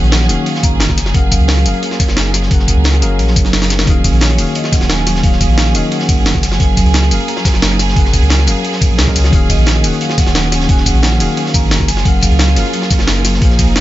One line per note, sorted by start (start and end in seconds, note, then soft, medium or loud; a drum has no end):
0.00 0.31 A#1 loud
0.00 0.28 D#3 medium
0.00 0.93 F#3 medium
0.00 0.28 A#3 medium
0.00 0.29 C#4 medium
0.00 0.95 C#4 medium
0.00 0.29 F#4 medium
0.00 0.30 G#4 medium
0.00 3.83 G#4 medium
0.00 0.31 F5 loud
0.00 0.48 F#5 loud
0.00 1.00 F#5 medium
0.00 closed hi-hat soft
0.12 snare loud
0.12 closed hi-hat medium
0.21 snare medium
0.21 snare soft
0.28 0.37 D#1 medium
0.28 0.39 D#3 medium
0.28 0.39 A#3 medium
0.28 0.39 C#4 medium
0.28 0.39 F#4 medium
0.28 0.40 G#4 medium
0.28 0.40 F5 loud
0.28 closed hi-hat medium
0.28 tambourine medium
0.46 0.64 F5 loud
0.46 closed hi-hat medium
0.46 open hi-hat medium
0.55 snare medium
0.63 1.11 A#5 loud
0.63 kick loud
0.63 closed hi-hat medium
0.63 tambourine medium
0.72 0.82 G#1 loud
0.80 0.88 F#1 loud
0.80 snare loud
0.80 closed hi-hat medium
0.89 1.13 F#1 medium
0.89 kick medium
0.89 snare soft
0.97 9.29 F#3 medium
0.97 3.84 A#3 medium
0.97 snare soft
0.97 closed hi-hat medium
0.97 closed hi-hat loud
0.97 tambourine medium
1.05 snare medium
1.05 snare soft
1.12 1.39 F#1 loud
1.12 1.61 F#3 medium
1.12 1.63 C#4 medium
1.12 1.64 G#4 medium
1.12 1.22 F#5 loud
1.12 kick loud
1.12 closed hi-hat medium
1.16 1.64 A#4 medium
1.16 1.65 F5 loud
1.31 1.96 F5 medium
1.31 kick medium
1.31 closed hi-hat medium
1.31 closed hi-hat loud
1.31 tambourine medium
1.40 1.67 C#2 loud
1.40 closed hi-hat soft
1.48 snare loud
1.48 closed hi-hat medium
1.57 snare soft
1.57 closed hi-hat soft
1.63 1.73 F#1 medium
1.63 2.47 F#3 medium
1.63 2.48 C#4 medium
1.63 2.49 G#4 medium
1.63 closed hi-hat loud
1.63 closed hi-hat medium
1.63 tambourine medium
1.67 2.50 A#4 medium
1.67 2.50 F5 medium
1.74 closed hi-hat soft
1.83 closed hi-hat medium
1.91 snare medium
1.91 snare soft
2.00 kick loud
2.00 snare soft
2.00 closed hi-hat medium
2.00 closed hi-hat loud
2.00 tambourine medium
2.08 2.50 F#1 medium
2.08 snare medium
2.08 snare soft
2.17 snare loud
2.17 closed hi-hat medium
2.34 snare soft
2.34 closed hi-hat medium
2.34 closed hi-hat loud
2.34 tambourine medium
2.42 snare medium
2.48 2.75 F#1 loud
2.48 2.99 F#3 medium
2.48 2.99 C#4 medium
2.48 3.00 G#4 medium
2.48 kick loud
2.48 closed hi-hat medium
2.52 3.01 A#4 medium
2.52 3.01 F#5 medium
2.59 snare soft
2.68 kick medium
2.68 closed hi-hat medium
2.68 closed hi-hat loud
2.68 tambourine medium
2.77 3.04 C#2 loud
2.84 snare loud
2.84 closed hi-hat medium
2.93 snare soft
2.93 closed hi-hat soft
3.01 3.21 F#1 medium
3.01 3.11 F#3 medium
3.01 3.12 C#4 medium
3.01 3.12 G#4 medium
3.01 3.12 A#4 medium
3.01 3.13 F5 loud
3.01 closed hi-hat loud
3.01 closed hi-hat medium
3.01 tambourine medium
3.19 3.38 A#1 loud
3.19 closed hi-hat medium
3.19 open hi-hat medium
3.27 snare medium
3.36 3.86 F#1 medium
3.36 kick loud
3.36 closed hi-hat medium
3.36 closed hi-hat loud
3.36 tambourine medium
3.45 snare soft
3.53 snare loud
3.53 closed hi-hat medium
3.62 snare medium
3.62 closed hi-hat soft
3.62 tambourine soft
3.70 snare loud
3.70 closed hi-hat medium
3.70 closed hi-hat loud
3.70 tambourine medium
3.79 snare loud
3.84 4.12 D#1 loud
3.84 4.34 D#3 medium
3.84 4.36 A#3 medium
3.84 4.36 C#4 medium
3.84 6.40 C#4 medium
3.84 4.37 F#4 medium
3.84 13.38 G#4 medium
3.84 kick loud
3.84 closed hi-hat medium
3.89 4.37 G#4 medium
3.89 4.38 F5 loud
4.04 kick medium
4.04 closed hi-hat loud
4.04 closed hi-hat medium
4.04 ride medium
4.04 tambourine medium
4.13 4.40 A#1 loud
4.13 closed hi-hat soft
4.21 4.57 C#5 medium
4.21 snare loud
4.21 closed hi-hat medium
4.30 snare soft
4.30 closed hi-hat soft
4.36 4.46 D#1 medium
4.36 5.20 D#3 medium
4.36 5.21 A#3 medium
4.36 5.21 C#4 medium
4.36 5.22 F#4 medium
4.36 closed hi-hat medium
4.36 closed hi-hat loud
4.36 ride medium
4.36 tambourine medium
4.40 5.23 G#4 medium
4.40 5.23 F5 medium
4.47 closed hi-hat soft
4.55 4.73 D#5 medium
4.55 closed hi-hat loud
4.55 closed hi-hat medium
4.64 snare soft
4.72 4.88 F#5 medium
4.72 kick loud
4.72 snare soft
4.72 closed hi-hat loud
4.72 closed hi-hat medium
4.72 ride medium
4.72 tambourine medium
4.81 5.22 D#1 medium
4.81 snare medium
4.81 snare soft
4.89 5.21 G#5 loud
4.89 snare loud
4.89 closed hi-hat medium
4.98 closed hi-hat soft
5.07 snare soft
5.07 closed hi-hat loud
5.07 closed hi-hat medium
5.07 ride medium
5.07 tambourine medium
5.16 snare medium
5.21 5.48 D#1 loud
5.21 5.71 D#3 medium
5.21 5.72 A#3 medium
5.21 5.72 C#4 medium
5.21 5.73 F#4 medium
5.21 5.71 F5 loud
5.21 kick loud
5.21 closed hi-hat loud
5.21 closed hi-hat medium
5.25 5.74 G#4 medium
5.25 5.74 F5 medium
5.32 snare soft
5.41 kick medium
5.41 closed hi-hat loud
5.41 closed hi-hat medium
5.41 ride medium
5.41 tambourine medium
5.49 5.76 A#1 loud
5.49 closed hi-hat soft
5.58 snare loud
5.58 closed hi-hat medium
5.66 snare medium
5.66 snare soft
5.73 5.82 D#1 medium
5.73 5.84 D#3 medium
5.73 5.84 A#3 medium
5.73 5.85 C#4 medium
5.73 5.85 F#4 medium
5.73 5.85 G#4 medium
5.73 5.92 D#5 medium
5.73 5.86 F5 loud
5.73 closed hi-hat medium
5.73 ride medium
5.73 tambourine medium
5.91 6.56 F#5 loud
5.91 closed hi-hat medium
5.91 open hi-hat medium
6.00 snare medium
6.09 kick loud
6.09 closed hi-hat loud
6.09 closed hi-hat medium
6.09 ride medium
6.09 tambourine medium
6.18 6.28 G#1 loud
6.26 6.34 F#1 loud
6.26 snare loud
6.26 closed hi-hat medium
6.34 6.59 F#1 medium
6.34 kick medium
6.34 snare medium
6.34 snare soft
6.43 9.30 A#3 medium
6.43 snare soft
6.43 closed hi-hat medium
6.43 closed hi-hat loud
6.43 ride medium
6.43 tambourine medium
6.51 snare medium
6.51 snare soft
6.57 6.84 F#1 loud
6.57 7.07 F#3 medium
6.57 7.08 C#4 medium
6.57 7.09 G#4 medium
6.57 7.30 G#5 loud
6.57 kick loud
6.57 closed hi-hat loud
6.57 closed hi-hat medium
6.61 7.10 A#4 medium
6.61 7.11 F5 loud
6.77 kick medium
6.77 closed hi-hat medium
6.77 ride medium
6.77 tambourine medium
6.86 7.13 C#2 loud
6.86 closed hi-hat soft
6.94 snare loud
6.94 closed hi-hat loud
6.94 closed hi-hat medium
7.03 snare soft
7.03 closed hi-hat soft
7.08 7.19 F#1 medium
7.08 7.92 F#3 medium
7.08 7.94 C#4 medium
7.08 7.94 G#4 medium
7.08 closed hi-hat medium
7.08 ride medium
7.08 tambourine medium
7.12 7.95 A#4 medium
7.12 7.96 F5 medium
7.20 closed hi-hat soft
7.28 7.76 A#5 loud
7.28 closed hi-hat medium
7.36 snare medium
7.36 snare soft
7.45 kick loud
7.45 snare loud
7.45 closed hi-hat medium
7.45 ride medium
7.45 tambourine medium
7.53 7.95 F#1 medium
7.53 snare medium
7.53 snare soft
7.62 snare loud
7.62 closed hi-hat medium
7.71 closed hi-hat soft
7.79 8.43 G#5 loud
7.79 snare soft
7.79 closed hi-hat medium
7.79 closed hi-hat loud
7.79 ride medium
7.79 tambourine medium
7.88 snare medium
7.93 8.21 F#1 loud
7.93 8.44 F#3 medium
7.93 8.45 C#4 medium
7.93 8.45 G#4 medium
7.93 kick loud
7.93 closed hi-hat loud
7.93 closed hi-hat medium
7.98 8.46 A#4 medium
7.98 8.47 F#5 medium
8.05 snare soft
8.13 kick medium
8.13 closed hi-hat medium
8.13 ride medium
8.13 tambourine medium
8.22 8.49 C#2 loud
8.22 closed hi-hat soft
8.30 snare loud
8.30 closed hi-hat medium
8.39 snare medium
8.39 snare soft
8.46 8.55 F#1 medium
8.46 8.57 F#3 medium
8.46 8.57 C#4 medium
8.46 8.57 G#4 medium
8.46 8.58 A#4 medium
8.46 8.58 F5 loud
8.46 closed hi-hat medium
8.46 ride medium
8.46 tambourine medium
8.65 closed hi-hat medium
8.65 open hi-hat medium
8.73 snare medium
8.81 kick loud
8.81 closed hi-hat medium
8.81 ride medium
8.81 tambourine medium
8.90 9.00 A#1 medium
8.98 9.06 C#2 medium
8.98 snare loud
8.98 closed hi-hat medium
9.06 9.30 F#3 medium
9.06 9.30 C#4 medium
9.06 9.31 G#4 medium
9.06 9.31 A#4 medium
9.06 9.31 D#5 medium
9.06 kick medium
9.06 snare medium
9.06 snare soft
9.15 9.31 C#2 loud
9.15 snare soft
9.15 closed hi-hat medium
9.15 ride medium
9.15 tambourine medium
9.24 snare medium
9.24 snare soft
9.29 9.57 D#1 loud
9.29 9.80 D#3 loud
9.29 13.38 F#3 medium
9.29 9.81 A#3 medium
9.29 9.81 C#4 medium
9.29 11.86 C#4 medium
9.29 9.82 F#4 medium
9.29 kick loud
9.29 closed hi-hat medium
9.34 9.82 G#4 medium
9.34 9.83 F5 loud
9.50 9.81 D#5 medium
9.50 kick medium
9.50 closed hi-hat medium
9.50 ride medium
9.50 tambourine medium
9.58 9.85 A#1 loud
9.58 closed hi-hat soft
9.66 snare loud
9.66 closed hi-hat medium
9.75 snare soft
9.75 closed hi-hat soft
9.81 9.92 D#1 medium
9.81 10.65 D#3 medium
9.81 10.66 A#3 medium
9.81 10.67 C#4 medium
9.81 10.67 F#4 medium
9.81 closed hi-hat medium
9.81 ride medium
9.81 tambourine medium
9.85 10.68 G#4 medium
9.85 10.68 F#5 medium
9.93 closed hi-hat soft
10.01 10.17 F5 medium
10.01 closed hi-hat medium
10.10 snare medium
10.10 snare soft
10.18 10.71 F#5 loud
10.18 kick loud
10.18 snare soft
10.18 closed hi-hat medium
10.18 ride medium
10.18 tambourine medium
10.26 10.68 D#1 medium
10.26 snare medium
10.26 snare soft
10.35 snare loud
10.35 closed hi-hat medium
10.43 closed hi-hat soft
10.52 snare soft
10.52 closed hi-hat medium
10.52 ride medium
10.52 tambourine medium
10.61 snare medium
10.66 10.93 D#1 loud
10.66 11.17 D#3 medium
10.66 11.17 A#3 medium
10.66 11.18 C#4 medium
10.66 11.18 F#4 medium
10.66 10.87 G#5 loud
10.66 kick loud
10.66 closed hi-hat medium
10.71 11.19 G#4 medium
10.71 11.20 F#5 medium
10.78 snare soft
10.86 11.39 F#5 loud
10.86 kick medium
10.86 closed hi-hat medium
10.86 ride medium
10.86 tambourine medium
10.95 11.22 A#1 loud
10.95 closed hi-hat soft
11.03 snare loud
11.03 closed hi-hat medium
11.12 snare medium
11.12 snare soft
11.19 11.28 D#1 medium
11.19 11.30 D#3 medium
11.19 11.30 A#3 medium
11.19 11.30 C#4 medium
11.19 11.30 F#4 medium
11.19 11.31 G#4 medium
11.19 11.31 F5 loud
11.19 closed hi-hat medium
11.19 ride medium
11.19 tambourine medium
11.37 11.55 F5 loud
11.37 closed hi-hat medium
11.37 open hi-hat medium
11.46 snare medium
11.54 11.89 A#5 loud
11.54 kick loud
11.54 closed hi-hat medium
11.54 closed hi-hat loud
11.54 ride medium
11.54 tambourine medium
11.63 11.73 G#1 loud
11.71 11.79 F#1 loud
11.71 snare loud
11.71 closed hi-hat medium
11.80 12.04 F#1 medium
11.80 kick medium
11.80 snare soft
11.88 13.80 A#3 medium
11.88 13.40 F4 medium
11.88 12.06 G#5 loud
11.88 snare soft
11.88 closed hi-hat loud
11.88 closed hi-hat medium
11.88 ride medium
11.88 tambourine medium
11.97 snare medium
11.97 snare soft
12.03 12.30 F#1 loud
12.03 12.53 F#3 medium
12.03 12.54 C#4 medium
12.03 12.55 G#4 medium
12.03 12.23 F#5 loud
12.03 kick loud
12.03 closed hi-hat medium
12.07 12.55 A#4 medium
12.07 12.56 F5 loud
12.21 12.87 F5 medium
12.21 kick medium
12.21 closed hi-hat medium
12.21 closed hi-hat loud
12.21 ride medium
12.21 tambourine medium
12.31 12.58 C#2 loud
12.31 closed hi-hat soft
12.39 snare loud
12.39 closed hi-hat medium
12.48 snare soft
12.48 closed hi-hat soft
12.54 12.64 F#1 medium
12.54 13.38 F#3 medium
12.54 13.39 C#4 medium
12.54 13.40 G#4 medium
12.54 closed hi-hat loud
12.54 closed hi-hat medium
12.54 ride medium
12.54 tambourine medium
12.58 13.41 A#4 medium
12.58 13.41 F5 medium
12.65 closed hi-hat soft
12.73 closed hi-hat medium
12.82 snare medium
12.82 snare soft
12.90 kick loud
12.90 snare soft
12.90 closed hi-hat medium
12.90 closed hi-hat loud
12.90 ride medium
12.90 tambourine medium
12.99 13.40 F#1 medium
12.99 snare medium
12.99 snare soft
13.07 snare loud
13.07 closed hi-hat medium
13.17 closed hi-hat soft
13.25 snare soft
13.25 closed hi-hat loud
13.25 closed hi-hat medium
13.25 ride medium
13.25 tambourine medium
13.34 snare medium
13.39 13.66 A#1 loud
13.39 13.80 F3 medium
13.39 13.80 A#3 medium
13.39 13.80 D#4 medium
13.39 13.80 F4 medium
13.39 13.80 G#4 medium
13.39 kick loud
13.39 closed hi-hat medium
13.44 13.80 C5 medium
13.44 13.80 F5 medium
13.50 snare soft
13.59 kick medium
13.59 closed hi-hat loud
13.59 closed hi-hat medium
13.59 ride medium
13.59 tambourine medium
13.67 13.80 F1 loud
13.67 closed hi-hat soft
13.76 snare loud
13.76 closed hi-hat medium